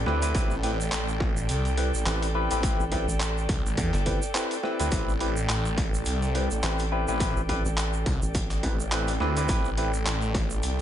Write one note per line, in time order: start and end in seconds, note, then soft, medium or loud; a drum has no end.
0.00 10.81 A4 medium
0.00 10.81 D5 medium
0.00 10.81 G5 medium
0.06 0.33 D2 medium
0.06 0.20 C4 loud
0.06 0.20 E4 medium
0.06 0.20 G4 medium
0.06 0.20 B4 loud
0.06 snare soft
0.22 0.33 C4 medium
0.22 0.33 E4 medium
0.22 0.33 G4 medium
0.22 0.33 B4 medium
0.22 closed hi-hat medium
0.22 shaker medium
0.35 0.90 A1 medium
0.35 0.55 C4 medium
0.35 0.55 E4 medium
0.35 0.55 G4 medium
0.35 0.55 B4 medium
0.35 kick loud
0.35 closed hi-hat medium
0.35 shaker medium
0.50 shaker soft
0.63 0.76 C4 medium
0.63 0.77 E4 medium
0.63 0.76 G4 medium
0.63 0.76 B4 loud
0.63 closed hi-hat medium
0.81 shaker medium
0.92 1.47 A1 loud
0.92 clap loud
0.92 closed hi-hat medium
0.92 shaker medium
1.08 shaker soft
1.20 kick loud
1.20 snare soft
1.37 shaker medium
1.49 1.92 C2 loud
1.49 closed hi-hat medium
1.49 shaker medium
1.65 closed hi-hat soft
1.65 shaker soft
1.77 1.91 C4 medium
1.77 1.91 E4 medium
1.77 1.91 G4 medium
1.77 1.91 B4 medium
1.77 closed hi-hat medium
1.94 2.04 A1 medium
1.94 shaker medium
2.06 2.48 A1 loud
2.06 2.26 C4 medium
2.06 2.26 E4 medium
2.06 2.26 G4 medium
2.06 2.26 B4 medium
2.06 clap loud
2.06 closed hi-hat medium
2.06 shaker medium
2.23 closed hi-hat medium
2.23 shaker soft
2.35 2.49 C4 loud
2.35 2.49 E4 medium
2.35 2.49 G4 medium
2.35 2.49 B4 loud
2.51 2.77 A1 loud
2.51 2.62 C4 medium
2.51 2.62 E4 medium
2.51 2.62 G4 medium
2.51 2.62 B4 medium
2.51 closed hi-hat medium
2.51 shaker medium
2.63 2.83 C4 medium
2.63 2.83 E4 medium
2.63 2.83 G4 medium
2.63 2.83 B4 medium
2.63 kick loud
2.63 closed hi-hat medium
2.63 shaker medium
2.79 3.06 A1 loud
2.79 shaker soft
2.92 3.05 C4 medium
2.92 3.05 E4 medium
2.92 3.05 G4 medium
2.92 3.05 B4 loud
2.92 kick medium
2.92 closed hi-hat medium
3.08 3.47 A1 loud
3.08 shaker medium
3.20 clap loud
3.20 closed hi-hat medium
3.20 shaker medium
3.38 shaker soft
3.49 3.63 C2 loud
3.49 kick loud
3.49 closed hi-hat medium
3.66 3.76 A1 loud
3.66 shaker medium
3.77 3.91 E2 loud
3.77 kick loud
3.77 closed hi-hat medium
3.77 shaker medium
3.94 4.20 G1 loud
3.94 clap soft
3.94 closed hi-hat soft
3.94 shaker soft
4.06 4.19 C4 medium
4.06 4.19 E4 medium
4.06 4.19 G4 medium
4.06 4.19 B4 medium
4.06 kick medium
4.06 closed hi-hat medium
4.22 shaker medium
4.35 4.55 C4 medium
4.35 4.55 E4 medium
4.35 4.54 G4 medium
4.35 4.54 B4 loud
4.35 clap loud
4.35 closed hi-hat medium
4.35 shaker medium
4.51 closed hi-hat medium
4.51 shaker soft
4.63 4.77 C4 loud
4.63 4.77 E4 medium
4.63 4.77 G4 medium
4.63 4.77 B4 loud
4.63 snare soft
4.80 4.90 D2 loud
4.80 4.90 C4 medium
4.80 4.90 E4 medium
4.80 4.90 G4 medium
4.80 4.90 B4 medium
4.80 closed hi-hat medium
4.80 shaker medium
4.92 5.47 A1 medium
4.92 5.12 C4 medium
4.92 5.12 E4 medium
4.92 5.12 G4 medium
4.92 5.12 B4 medium
4.92 kick loud
4.92 closed hi-hat medium
4.92 shaker medium
5.09 shaker soft
5.20 5.34 C4 medium
5.20 5.34 E4 medium
5.20 5.34 G4 medium
5.20 5.34 B4 medium
5.20 closed hi-hat medium
5.37 shaker medium
5.49 6.04 A1 loud
5.49 clap loud
5.49 closed hi-hat medium
5.49 shaker medium
5.65 shaker soft
5.78 kick loud
5.78 snare soft
5.78 closed hi-hat medium
5.94 shaker medium
6.05 6.49 C2 loud
6.05 closed hi-hat medium
6.05 shaker medium
6.22 closed hi-hat soft
6.22 shaker soft
6.35 6.48 C4 medium
6.35 6.48 E4 medium
6.35 6.48 G4 medium
6.35 6.48 B4 medium
6.35 closed hi-hat medium
6.51 6.62 A1 medium
6.51 shaker medium
6.63 7.06 A1 loud
6.63 6.83 C4 medium
6.63 6.83 E4 medium
6.63 6.83 G4 medium
6.63 6.83 B4 loud
6.63 clap loud
6.63 closed hi-hat medium
6.63 shaker medium
6.79 closed hi-hat medium
6.79 shaker soft
6.92 7.06 C4 loud
6.92 7.06 E4 medium
6.92 7.06 G4 medium
6.92 7.06 B4 loud
7.08 7.34 A1 loud
7.08 7.19 C4 medium
7.08 7.19 E4 medium
7.08 7.19 G4 medium
7.08 7.19 B4 medium
7.08 shaker medium
7.20 7.41 C4 medium
7.20 7.40 E4 medium
7.20 7.41 G4 medium
7.20 7.40 B4 medium
7.20 kick loud
7.20 closed hi-hat medium
7.20 shaker medium
7.36 7.63 A1 loud
7.36 shaker soft
7.49 7.62 C4 medium
7.49 7.62 E4 medium
7.49 7.62 G4 medium
7.49 7.62 B4 loud
7.49 kick medium
7.49 closed hi-hat medium
7.65 8.04 A1 loud
7.65 shaker medium
7.77 clap loud
7.77 closed hi-hat medium
7.77 shaker medium
7.93 shaker soft
8.06 8.20 C2 medium
8.06 kick loud
8.06 closed hi-hat medium
8.22 8.61 A1 medium
8.22 shaker medium
8.35 kick loud
8.35 closed hi-hat medium
8.35 shaker medium
8.50 clap soft
8.50 closed hi-hat soft
8.50 shaker soft
8.63 9.19 A1 loud
8.63 8.77 C4 medium
8.63 8.77 E4 medium
8.63 8.77 G4 medium
8.63 8.77 B4 medium
8.63 kick medium
8.63 closed hi-hat medium
8.80 shaker medium
8.91 9.12 C4 medium
8.91 9.12 E4 medium
8.91 9.12 G4 medium
8.91 9.12 B4 loud
8.91 clap loud
8.91 closed hi-hat medium
8.91 shaker medium
9.08 closed hi-hat medium
9.08 shaker soft
9.20 9.47 D2 loud
9.20 9.35 C4 loud
9.20 9.35 E4 medium
9.20 9.35 G4 medium
9.20 9.35 B4 loud
9.20 snare soft
9.37 9.48 C4 medium
9.37 9.48 E4 medium
9.37 9.48 G4 medium
9.37 9.48 B4 loud
9.37 closed hi-hat medium
9.37 shaker medium
9.48 10.04 A1 loud
9.48 9.69 C4 medium
9.48 9.69 E4 medium
9.48 9.69 G4 medium
9.48 9.69 B4 medium
9.48 kick loud
9.48 closed hi-hat medium
9.48 shaker medium
9.65 shaker soft
9.78 9.91 C4 medium
9.78 9.91 E4 medium
9.78 9.91 G4 medium
9.78 9.91 B4 loud
9.78 closed hi-hat medium
9.94 shaker medium
10.06 10.61 A1 loud
10.06 clap loud
10.06 closed hi-hat medium
10.06 shaker medium
10.22 shaker soft
10.35 kick loud
10.35 snare soft
10.35 closed hi-hat medium
10.50 shaker medium
10.63 10.81 C2 loud
10.63 closed hi-hat medium
10.63 shaker medium